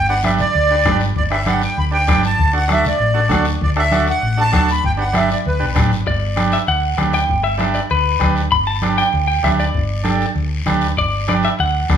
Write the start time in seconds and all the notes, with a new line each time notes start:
Already playing: G1
0.08 D4 G4 B4 F#5
0.23 D4 G4 B4 E5, bombo rim, high conga, short guiro
0.39 D5, low conga, short guiro
0.53 D2, high conga, long guiro
0.71 D4 G4 B4
0.85 G1 D4 G4 B4, bombo low, bombo rim, high conga, low conga, short guiro
1.00 short guiro
1.16 G1 D5, bombo low, high conga, long guiro
1.31 D4 G4 B4 E5, bombo rim
1.46 D4 G4 B4 F#5, bombo rim, high conga, short guiro
1.62 G5, short guiro
1.77 D2 B5, high conga, long guiro
1.91 D4 G4 B4 G5
2.08 G1 D4 G4 B4, bombo low, bombo rim, high conga, short guiro
2.23 A5, short guiro
2.39 D2, bombo low, high conga, long guiro
2.53 D4 F#4 A4 F#5
2.68 D4 F#4 A4, bombo rim, high conga, short guiro
2.73 E5
2.85 D5, low conga, short guiro
3.00 A1, high conga
3.14 D4 F#4 A4
3.29 D2 D4 F#4 A4, bombo low, bombo rim, high conga, low conga, short guiro
3.45 short guiro
3.61 D2 D5, bombo low, high conga, long guiro
3.76 D4 F#4 A4 E5, bombo rim
3.92 D4 F#4 A4, bombo rim, high conga, short guiro
4.07 F#5, short guiro
4.22 A1, high conga, long guiro
4.37 D4 F#4 A4 A5
4.52 D2 D4 F#4 A4, bombo low, bombo rim, high conga, short guiro
4.68 B5, short guiro
4.84 G1 G5, bombo low, high conga, long guiro
4.97 D4 G4 B4 F#5
5.13 D4 G4 B4 E5, bombo rim, high conga, short guiro
5.30 D5, short guiro
5.45 D2 B4, high conga, long guiro
5.60 B1 D4 G4 B4
5.75 A1 D4 G4 B4, bombo low, bombo rim, high conga, low conga, short guiro
5.92 G1, short guiro
6.07 G1 D5, bombo low, high conga, long guiro
6.36 D4 G4 B4, bombo rim, high conga, short guiro
6.52 E5, short guiro
6.67 D2 F#5, high conga, long guiro
6.97 D2 D4 G4 B4, bombo low, bombo rim, high conga, short guiro
7.13 G5, short guiro
7.29 G1, bombo low, high conga, long guiro
7.44 E5
7.58 D4 G4 B4, bombo rim, high conga, short guiro
7.74 D5, short guiro
7.90 D2 B4, high conga, long guiro
8.19 D2 D4 G4 B4, bombo low, bombo rim, high conga, short guiro
8.36 short guiro
8.51 G1 B5, bombo low, high conga, long guiro
8.67 A5
8.82 D4 G4 B4, bombo rim, high conga, short guiro
8.98 G5, short guiro
9.13 D2, high conga, long guiro
9.28 G5
9.43 D2 D4 G4 B4 E5, bombo low, bombo rim, high conga, short guiro
9.59 D5, short guiro
9.74 G1, bombo low, high conga, long guiro
10.04 D4 G4 A4, bombo rim, high conga, short guiro
10.21 short guiro
10.35 D2, high conga, long guiro
10.66 D2 D4 G4 B4, bombo low, bombo rim, high conga, short guiro
10.81 short guiro
10.97 G1 D5, bombo low, high conga, long guiro
11.27 D4 G4 B4 D5, bombo rim, high conga, short guiro
11.43 E5, short guiro
11.59 D2 F#5, high conga, long guiro
11.89 D2 D4 G4 B4, bombo low, bombo rim, high conga, short guiro